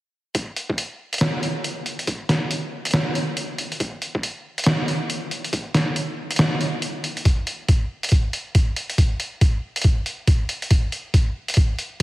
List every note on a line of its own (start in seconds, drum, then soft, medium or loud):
0.35 kick loud
0.35 closed hi-hat medium
0.56 closed hi-hat soft
0.70 kick medium
0.78 closed hi-hat medium
1.13 closed hi-hat soft
1.13 closed hi-hat medium
1.18 snare loud
1.18 closed hi-hat medium
1.21 closed hi-hat medium
1.43 closed hi-hat soft
1.64 closed hi-hat medium
1.86 closed hi-hat soft
1.99 closed hi-hat soft
2.07 kick loud
2.07 closed hi-hat medium
2.29 snare medium
2.29 closed hi-hat soft
2.51 closed hi-hat medium
2.85 closed hi-hat soft
2.85 closed hi-hat medium
2.91 snare loud
2.91 closed hi-hat medium
2.94 closed hi-hat medium
3.15 closed hi-hat soft
3.37 closed hi-hat medium
3.58 closed hi-hat soft
3.72 closed hi-hat soft
3.80 kick loud
3.80 closed hi-hat medium
4.02 closed hi-hat soft
4.15 kick loud
4.23 closed hi-hat medium
4.58 closed hi-hat soft
4.58 closed hi-hat medium
4.64 snare loud
4.64 closed hi-hat medium
4.67 closed hi-hat medium
4.88 closed hi-hat soft
5.10 closed hi-hat medium
5.31 closed hi-hat soft
5.44 closed hi-hat soft
5.53 kick loud
5.53 closed hi-hat medium
5.74 snare medium
5.74 closed hi-hat soft
5.96 closed hi-hat medium
6.31 closed hi-hat soft
6.31 closed hi-hat medium
6.36 snare loud
6.36 closed hi-hat medium
6.39 closed hi-hat medium
6.61 closed hi-hat soft
6.82 closed hi-hat medium
7.04 closed hi-hat soft
7.17 closed hi-hat soft
7.25 kick medium
7.25 closed hi-hat medium
7.47 closed hi-hat soft
7.68 kick medium
7.68 closed hi-hat medium
8.03 closed hi-hat soft
8.03 closed hi-hat medium
8.09 closed hi-hat medium
8.12 kick medium
8.12 closed hi-hat medium
8.33 closed hi-hat soft
8.55 kick medium
8.55 closed hi-hat medium
8.76 closed hi-hat medium
8.90 closed hi-hat soft
8.98 kick medium
8.98 closed hi-hat medium
9.20 closed hi-hat soft
9.41 kick medium
9.41 closed hi-hat medium
9.76 closed hi-hat soft
9.76 closed hi-hat medium
9.82 closed hi-hat medium
9.84 kick medium
9.84 closed hi-hat medium
10.06 closed hi-hat soft
10.27 kick loud
10.27 closed hi-hat medium
10.49 closed hi-hat soft
10.62 closed hi-hat soft
10.71 kick medium
10.71 closed hi-hat medium
10.92 closed hi-hat soft
11.14 kick medium
11.14 closed hi-hat medium
11.48 closed hi-hat soft
11.48 closed hi-hat medium
11.54 closed hi-hat medium
11.57 kick loud
11.57 closed hi-hat medium
11.79 closed hi-hat soft